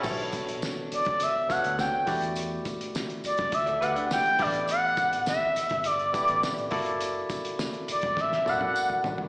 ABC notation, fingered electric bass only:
X:1
M:4/4
L:1/16
Q:1/4=103
K:Bm
V:1 name="Fingered electric bass" clef=bass
B,,,4 z3 C,,3 z D,,2 z E,,2- | E,,2 z4 z F,, D,,2 D,, z3 A,,,2- | A,,,4 z3 G,,,3 z A,,,2 z F,,,2- | F,,,2 z4 z E,,, A,,,2 E,,, z3 A,,,2 |]